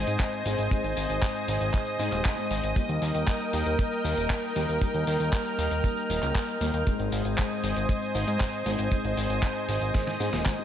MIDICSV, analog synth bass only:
0, 0, Header, 1, 2, 480
1, 0, Start_track
1, 0, Key_signature, -4, "major"
1, 0, Tempo, 512821
1, 668, Time_signature, 4, 2, 24, 8
1, 9964, End_track
2, 0, Start_track
2, 0, Title_t, "Analog synth bass"
2, 0, Program_c, 0, 38
2, 68, Note_on_c, 0, 44, 83
2, 162, Note_off_c, 0, 44, 0
2, 427, Note_on_c, 0, 32, 99
2, 522, Note_off_c, 0, 32, 0
2, 548, Note_on_c, 0, 32, 86
2, 642, Note_off_c, 0, 32, 0
2, 788, Note_on_c, 0, 32, 77
2, 883, Note_off_c, 0, 32, 0
2, 907, Note_on_c, 0, 32, 97
2, 1002, Note_off_c, 0, 32, 0
2, 1028, Note_on_c, 0, 32, 88
2, 1123, Note_off_c, 0, 32, 0
2, 1388, Note_on_c, 0, 32, 91
2, 1482, Note_off_c, 0, 32, 0
2, 1507, Note_on_c, 0, 32, 84
2, 1602, Note_off_c, 0, 32, 0
2, 1866, Note_on_c, 0, 44, 93
2, 1961, Note_off_c, 0, 44, 0
2, 1986, Note_on_c, 0, 27, 84
2, 2081, Note_off_c, 0, 27, 0
2, 2345, Note_on_c, 0, 32, 100
2, 2441, Note_off_c, 0, 32, 0
2, 2466, Note_on_c, 0, 32, 82
2, 2561, Note_off_c, 0, 32, 0
2, 2706, Note_on_c, 0, 39, 73
2, 2801, Note_off_c, 0, 39, 0
2, 2826, Note_on_c, 0, 39, 99
2, 2921, Note_off_c, 0, 39, 0
2, 2945, Note_on_c, 0, 39, 86
2, 3041, Note_off_c, 0, 39, 0
2, 3308, Note_on_c, 0, 39, 97
2, 3402, Note_off_c, 0, 39, 0
2, 3426, Note_on_c, 0, 39, 87
2, 3522, Note_off_c, 0, 39, 0
2, 3787, Note_on_c, 0, 39, 103
2, 3882, Note_off_c, 0, 39, 0
2, 3908, Note_on_c, 0, 27, 87
2, 4003, Note_off_c, 0, 27, 0
2, 4268, Note_on_c, 0, 39, 99
2, 4363, Note_off_c, 0, 39, 0
2, 4389, Note_on_c, 0, 39, 82
2, 4483, Note_off_c, 0, 39, 0
2, 4629, Note_on_c, 0, 39, 74
2, 4723, Note_off_c, 0, 39, 0
2, 4748, Note_on_c, 0, 39, 96
2, 4842, Note_off_c, 0, 39, 0
2, 4867, Note_on_c, 0, 39, 86
2, 4962, Note_off_c, 0, 39, 0
2, 5227, Note_on_c, 0, 39, 96
2, 5322, Note_off_c, 0, 39, 0
2, 5347, Note_on_c, 0, 39, 81
2, 5442, Note_off_c, 0, 39, 0
2, 5708, Note_on_c, 0, 27, 98
2, 5802, Note_off_c, 0, 27, 0
2, 5827, Note_on_c, 0, 37, 86
2, 5922, Note_off_c, 0, 37, 0
2, 6186, Note_on_c, 0, 39, 100
2, 6281, Note_off_c, 0, 39, 0
2, 6306, Note_on_c, 0, 39, 83
2, 6401, Note_off_c, 0, 39, 0
2, 6547, Note_on_c, 0, 32, 75
2, 6642, Note_off_c, 0, 32, 0
2, 6668, Note_on_c, 0, 32, 94
2, 6762, Note_off_c, 0, 32, 0
2, 6789, Note_on_c, 0, 32, 85
2, 6883, Note_off_c, 0, 32, 0
2, 7147, Note_on_c, 0, 32, 92
2, 7242, Note_off_c, 0, 32, 0
2, 7266, Note_on_c, 0, 32, 84
2, 7362, Note_off_c, 0, 32, 0
2, 7627, Note_on_c, 0, 32, 97
2, 7722, Note_off_c, 0, 32, 0
2, 7746, Note_on_c, 0, 44, 84
2, 7842, Note_off_c, 0, 44, 0
2, 8105, Note_on_c, 0, 32, 97
2, 8201, Note_off_c, 0, 32, 0
2, 8226, Note_on_c, 0, 32, 82
2, 8321, Note_off_c, 0, 32, 0
2, 8465, Note_on_c, 0, 32, 78
2, 8561, Note_off_c, 0, 32, 0
2, 8585, Note_on_c, 0, 32, 93
2, 8681, Note_off_c, 0, 32, 0
2, 8704, Note_on_c, 0, 32, 84
2, 8801, Note_off_c, 0, 32, 0
2, 9067, Note_on_c, 0, 32, 94
2, 9162, Note_off_c, 0, 32, 0
2, 9186, Note_on_c, 0, 32, 82
2, 9281, Note_off_c, 0, 32, 0
2, 9548, Note_on_c, 0, 44, 97
2, 9642, Note_off_c, 0, 44, 0
2, 9668, Note_on_c, 0, 27, 84
2, 9763, Note_off_c, 0, 27, 0
2, 9964, End_track
0, 0, End_of_file